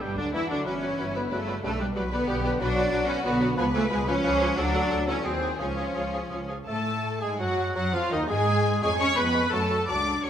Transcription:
Already playing: D4
0.01 G1 G2 B2 G3 G4
0.18 D2 D3 F#3 D4 D5
0.33 E2 E3 G3 E4 F#4 E5
0.50 D2 D3 F#3 D4 D5
0.66 G1 E3 F#3 C#4 E4 F#4 B4 C#5 D5
0.81 F#3 F#4 B4 D5
0.98 G1 F#3 F#4 B4 D5
1.14 D3 F#3 B3 F#4 B4 D5
1.31 G1 C#3 F#3 A3 F#4 A4 B4 D5
1.47 F#3 F#4 B4 D5
1.63 B1 C#3 G3 A3 D4 G4 A4 B4 D5
1.80 B2 G3 G4 B4 D5
1.95 B1 A2 F#3 G3 F#4 G4 B4 D5
2.11 D3 G3 B3 G4 B4 D5
2.27 B1 G3 G4 B4 D5
2.44 G3 G4 B4 D5
2.60 B1 F#3 D4 F#4 B4 D5
2.76 F#3 F#4 B4 D5
2.92 B1 F#3 F#4 B4 D5
3.08 E3 F#3 C#4 F#4 B4 C#5 D5
3.24 B1 D3 F#3 B3 F#4 B4 D5
3.40 F#3 F#4 B4 D5
3.56 C#2 F3 B3 F4 B4 G#5
3.74 C#3 F3 A3 F4 A4 B4 G#5
3.90 C#2 B2 F3 G#3 F4 G#4 B4 G#5
4.07 F3 C#4 F4 B4 C#5 G#5
4.24 C#2 F3 F4 G#4 B4 G#5
4.40 F3 F4 B4 G#5
4.56 D2 F#3 D4 F#4 A4 D5 F#5
4.72 F#3 F#4 A4 F#5
4.90 D2 F#3 F#4 A4 F#5
5.07 E3 F#3 C#4 F#4 A4 C#5 F#5
5.24 D#2 D#3 F#3 C4 F#4 G#4 C5 G#5
5.41 F#3 F#4 G#4 G#5
5.59 C#2 F3 C#4 F4 G#4 C#5 G#5
5.77 F3 F4 G#4 G#5
5.95 C#2 F3 F4 G#4 G#5
6.12 F3 F4 G#4 G#5
6.30 C#2 F3 F4 G#4 G#5
6.48 F3 F4 G#4 G#5
6.66 A2 A3 A4 A5
7.21 G#2 G#3 G#4 G#5
7.39 F#2 F#3 F#4 F#5
7.75 F#2 F#3 F#4 F#5
7.93 F2 F3 F4 F5
8.12 D#2 D#3 D#4 D#5
8.29 G#2 G#3 G#4 G#5
8.82 F2 G#3 C#4 G#4 G#5 C#6
8.99 G#3 C#4 C#5 C#6
9.17 F2 G#3 B3 B4 B5 C#6
9.35 G#3 C#6
9.53 F#2 F#3 A3 C#4 A4 A5 C#6
9.71 F#3 C#6
9.88 C#2 F#3 A3 D4 F#4 D5 A5 D6
10.06 F#3 A5
10.24 C#2 F#3 G#3 C#4 C#5 A5 C#6

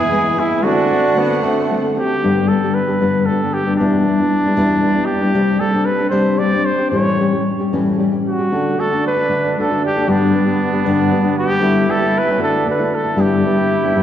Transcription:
Already playing: E2 B2 G#3 B3 E4 G#4 B4 G#5
0.10 E3 G#3 B3 E4
0.37 E3 G#3 B3 E4
0.63 D3 A3 C4 D4 F#4 F#5
0.67 D4 C5
0.91 A3 C4 F#4
1.16 D3 A3 B3 C4 F#4
1.43 D3 A3 C4 F#4
1.71 D3 A3 C4 F#4
1.96 A3 C4 F#4 G4
2.23 G2 D3 G3 B3 D4 G4
2.48 G3 B3 D4 G4 A4
2.64 G3 B3 D4 G4
2.74 B4
2.88 G3 B3 D4 G4
3.01 G2 D3 G3 B3 D4 G4
3.26 G3 B3 D4 G4 A4
3.42 G3 B3 D4 G4
3.54 G4
3.66 G3 B3 D4 G4
3.76 E2 G3 B3 D4
3.81 B2 E4
4.08 G3 B3 D4 E4
4.20 G3 B3 D4 E4
4.46 G3 B3 D4 E4
4.56 E2 B2 G3 B3 D4 E4
4.83 G3 B3 D4 E4
4.95 G3 B3 D4 E4
5.06 G4
5.21 G3 B3 D4 E4
5.34 C3 G3 C4 D4 G4
5.59 G3 C4 D4 G4 A4
5.73 C4 D4 G4
5.86 B4
5.99 C4 D4 G4
6.10 C3 G3 C4 D4 G4 C5
6.39 G3 C4 D4 G4 D5
6.53 C4 D4 G4
6.65 C5
6.79 C4 D4 G4
6.90 A2 E3 G3 C#4 G4 C#5
7.19 E3 G3 C#4 G4
7.33 G3 C#4 G4
7.60 G3 C#4 G4
7.73 A2 E3 G3 C#4 G4
7.98 E3 G3 C#4 G4
8.12 G3 C#4 G4
8.28 F#4
8.39 G3 C#4 G4
8.52 D3 A3 D4 F#4
8.78 D3 A3 D4 F#4 A4
8.92 A3 D4 F#4
9.07 B4
9.17 A3 D4 F#4
9.29 D3 A3 D4 F#4
9.58 D3 A3 D4 F#4 A4
9.71 A3 D4 F#4
9.85 G4
9.96 A3 D4 F#4
10.07 G2 D3 G3 B3 D4 G4
10.34 G3 B3 D4 G4
10.46 G3 B3 D4 G4
10.73 G3 B3 D4 G4
10.85 G2 D3 G3 B3 D4 G4
11.11 G3 B3 D4 G4
11.23 G3 B3 D4 G4
11.39 G4
11.47 G3 B3 D4 G4
11.60 D3 G3 B3 E4 G4
11.88 D3 G3 B3 G4 A4
11.99 G3 B3 G4
12.18 B4
12.25 G3 B3 G4
12.31 C#4
12.37 D3 A3 D4 E4 F#4
12.43 A4
12.66 D3 A3 E4 F#4 B4
12.79 A3 E4 F#4
12.95 A4
13.03 A3 E4 F#4
13.15 G2 D3 G3 B3 D4 E4 G4
13.21 G4
13.45 G3 B3 D4 G4
13.58 G3 B3 D4 G4
13.84 G3 B3 D4 G4
13.96 G2 D3 G3 B3 D4 G4

